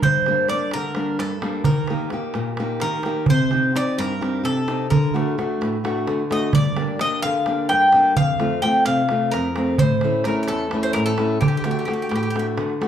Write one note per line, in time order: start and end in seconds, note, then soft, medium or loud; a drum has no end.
0.02 0.48 G2 medium
0.02 0.49 C5 medium
0.02 darbuka dum medium
0.15 darbuka tek soft
0.26 0.49 G3 soft
0.26 0.50 A#3 soft
0.26 0.50 D4 medium
0.26 darbuka tek medium
0.38 darbuka tek soft
0.48 0.87 G3 soft
0.48 0.87 A#3 soft
0.48 0.88 D4 medium
0.48 0.71 D5 medium
0.48 darbuka tek medium
0.61 darbuka tek soft
0.71 1.19 D3 medium
0.71 1.16 A#4 medium
0.71 darbuka tek medium
0.95 1.33 G3 soft
0.95 1.33 A#3 soft
0.95 1.33 D4 soft
0.95 darbuka tek medium
1.19 1.64 G2 medium
1.19 1.63 A4 medium
1.19 darbuka tek medium
1.30 darbuka tek soft
1.42 1.61 G3 medium
1.42 1.61 A#3 soft
1.42 1.61 D4 medium
1.42 darbuka tek medium
1.64 2.11 D#3 medium
1.64 2.08 A#4 medium
1.64 darbuka dum medium
1.76 darbuka tek soft
1.88 2.11 A#3 soft
1.88 2.12 D#4 soft
1.88 2.12 G4 medium
1.88 darbuka tek medium
1.99 darbuka tek soft
2.10 2.49 A#3 soft
2.10 2.50 D#4 soft
2.10 2.50 G4 medium
2.10 darbuka tek medium
2.22 darbuka tek soft
2.34 2.80 A#2 medium
2.34 darbuka tek medium
2.57 2.96 A#3 medium
2.57 2.96 D#4 soft
2.57 2.97 G4 medium
2.57 darbuka tek medium
2.80 3.27 D#3 medium
2.80 3.25 A#4 medium
2.80 darbuka tek medium
2.91 darbuka tek soft
3.03 3.24 A#3 soft
3.03 3.24 D#4 soft
3.03 3.24 G4 medium
3.03 darbuka tek medium
3.26 3.74 C3 medium
3.26 3.72 C5 loud
3.26 darbuka dum medium
3.39 darbuka tek soft
3.51 3.74 C4 soft
3.51 3.74 D#4 soft
3.51 3.74 G4 medium
3.51 darbuka tek medium
3.63 darbuka tek soft
3.75 4.12 C4 soft
3.75 4.12 D#4 soft
3.75 4.12 G4 medium
3.75 3.98 D5 loud
3.75 darbuka tek medium
3.88 darbuka tek soft
3.98 4.43 G2 medium
3.98 4.41 A#4 medium
3.98 darbuka tek medium
4.21 4.58 C4 soft
4.21 4.58 D#4 soft
4.21 4.59 G4 medium
4.21 darbuka tek medium
4.43 4.89 C3 medium
4.43 4.88 A4 medium
4.43 darbuka tek medium
4.68 4.87 C4 medium
4.68 4.86 D#4 soft
4.68 4.86 G4 medium
4.68 darbuka tek medium
4.90 5.36 D3 medium
4.90 5.34 A#4 medium
4.90 darbuka dum loud
5.04 darbuka tek soft
5.14 5.37 A3 soft
5.14 5.37 D4 soft
5.14 5.37 F#4 medium
5.14 darbuka tek medium
5.28 darbuka tek soft
5.38 5.75 A3 soft
5.38 5.75 D4 soft
5.38 5.75 F#4 medium
5.38 darbuka tek medium
5.61 6.06 A2 medium
5.61 darbuka tek medium
5.84 6.21 A3 soft
5.84 6.21 D4 soft
5.84 6.22 F#4 medium
5.84 darbuka tek medium
6.07 6.52 D3 medium
6.07 darbuka tek medium
6.20 darbuka tek soft
6.30 6.49 A3 soft
6.30 6.49 D4 soft
6.30 6.50 F#4 medium
6.30 6.54 D#5 medium
6.30 darbuka tek medium
6.43 darbuka tek soft
6.53 6.98 G2 medium
6.53 6.98 D5 medium
6.53 darbuka dum loud
6.65 darbuka tek soft
6.76 6.99 A#3 soft
6.76 7.00 D4 soft
6.76 7.00 G4 soft
6.76 darbuka tek medium
6.88 darbuka tek soft
6.99 7.37 A#3 soft
6.99 7.38 D4 soft
6.99 7.38 G4 medium
6.99 7.22 D#5 medium
6.99 darbuka tek medium
7.12 darbuka tek soft
7.22 7.69 D3 medium
7.22 7.69 F5 loud
7.22 darbuka tek medium
7.46 7.84 A#3 soft
7.46 7.85 D4 soft
7.46 7.85 G4 soft
7.46 darbuka tek medium
7.69 8.15 G2 medium
7.69 8.16 G5 medium
7.69 darbuka tek medium
7.82 darbuka tek soft
7.92 8.12 A#3 soft
7.92 8.13 D4 soft
7.92 8.12 G4 medium
7.92 darbuka tek medium
8.16 8.62 F2 medium
8.16 8.60 F5 medium
8.16 darbuka dum medium
8.29 darbuka tek soft
8.40 8.62 A3 soft
8.40 8.63 C4 soft
8.40 8.63 F4 medium
8.40 darbuka tek medium
8.52 darbuka tek soft
8.62 9.00 A3 soft
8.62 9.01 C4 soft
8.62 9.01 F4 medium
8.62 8.85 G5 medium
8.62 darbuka tek medium
8.75 darbuka tek soft
8.85 9.31 C3 medium
8.85 9.29 F5 loud
8.85 darbuka tek medium
9.09 9.47 A3 soft
9.09 9.47 C4 soft
9.09 9.48 F4 soft
9.09 darbuka tek medium
9.31 9.78 F2 medium
9.31 9.75 A#4 medium
9.31 darbuka tek medium
9.44 darbuka tek soft
9.56 9.75 A3 medium
9.56 9.75 C4 soft
9.56 9.76 F4 medium
9.56 darbuka tek medium
9.78 10.25 A2 medium
9.78 10.25 C5 loud
9.78 darbuka dum loud
9.90 darbuka tek soft
10.01 10.25 A3 soft
10.01 10.26 C#4 soft
10.01 10.26 E4 medium
10.01 darbuka tek medium
10.14 darbuka tek soft
10.24 10.63 A3 soft
10.24 10.64 C#4 soft
10.24 10.64 E4 medium
10.24 10.40 A#4 medium
10.24 darbuka tek medium
10.36 darbuka tek soft
10.43 10.48 A#4 medium
10.48 10.94 E2 medium
10.48 10.81 A4 medium
10.48 darbuka tek medium
10.71 11.10 A3 medium
10.71 11.11 C#4 soft
10.71 11.10 E4 medium
10.71 darbuka tek medium
10.83 10.93 C5 medium
10.93 11.41 A2 medium
10.93 11.05 A#4 medium
10.93 darbuka tek medium
11.06 11.39 A4 medium
11.06 darbuka tek soft
11.18 11.37 A3 soft
11.18 11.37 C#4 soft
11.18 11.37 E4 medium
11.18 darbuka tek medium
11.41 11.87 D3 medium
11.41 11.47 G4 medium
11.41 darbuka dum loud
11.48 11.56 G4 medium
11.53 darbuka tek soft
11.57 11.63 G4 medium
11.64 11.87 A3 soft
11.64 11.87 D4 soft
11.64 11.88 F#4 soft
11.64 11.70 G4 soft
11.64 darbuka tek medium
11.71 11.78 G4 medium
11.79 11.84 G4 soft
11.85 12.25 A3 soft
11.85 12.25 D4 soft
11.85 12.26 F#4 medium
11.85 11.92 G4 soft
11.85 darbuka tek medium
11.94 12.01 G4 soft
12.02 12.08 G4 soft
12.09 12.57 A2 medium
12.09 12.14 G4 soft
12.09 darbuka tek medium
12.15 12.22 G4 medium
12.23 12.29 G4 soft
12.23 darbuka tek soft
12.30 12.38 G4 medium
12.35 12.72 A3 soft
12.35 12.73 D4 soft
12.35 12.73 F#4 soft
12.35 darbuka tek medium
12.39 12.46 G4 medium
12.57 12.88 D3 medium
12.57 darbuka tek medium
12.69 darbuka tek soft
12.81 12.88 A3 soft
12.81 12.88 D4 soft
12.81 12.88 F#4 medium
12.81 darbuka tek medium